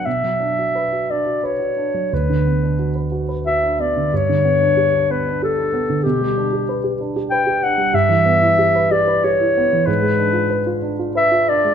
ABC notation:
X:1
M:3/4
L:1/16
Q:1/4=92
K:Bm
V:1 name="Clarinet"
e6 d2 c4 | B6 z2 e2 d2 | c6 B2 A4 | G6 z2 g2 f2 |
[K:Edor] e6 d2 c4 | B6 z2 e2 d2 |]
V:2 name="Grand piano"
B,, F, D F B F D F B F D F, | D,, D, B, D F B F B F D B, D, | G,, D, B, D G D B, D G D B, D, | B,, G, D G B G D G B G D G, |
[K:Edor] G,, E, B, E G B G B G E B, E, | ^G,, ^G, D ^E B E D E B E D G, |]